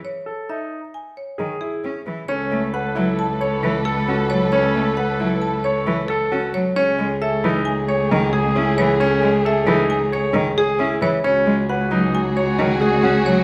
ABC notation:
X:1
M:5/4
L:1/8
Q:1/4=134
K:Bmix
V:1 name="Marimba"
c z e z g c z G z2 | c z f z a c z A z c | c z f z a c z A z c | c z e z g c z G z c |
c z e z g c z G z c | c z f z g c z G z c |]
V:2 name="Alto flute"
z8 z2 | A8- A2- | A8- A z | G8- G2- |
G8- G z | F8- F2 |]
V:3 name="String section"
z8 z2 | [AB]8- [AB]2- | [AB]8- [AB] z | [A,G]8- [A,G]2- |
[A,G]8- [A,G] z | [FG]8- [FG]2 |]
V:4 name="Grand piano"
z A D z3 G E z2 | C z B E z c z A F z | C z B E z c z A F z | C z A D z c z G E z |
C z A D z c z G E z | C z B D z c z G F z |]
V:5 name="Cello" clef=bass
z6 D, z C E, | z A, z F, z2 E, z C F, | z A, z F, z2 E, z C F, | z G, z E, z2 D, z C E, |
z G, z E, z2 D, z C E, | z G, z F, z2 D, z C F, |]
V:6 name="Cello" clef=bass
z8 z2 | C,,8- C,,2- | C,,8- C,,2 | C,,8- C,,2- |
C,,8- C,,2 | C,,8- C,,2 |]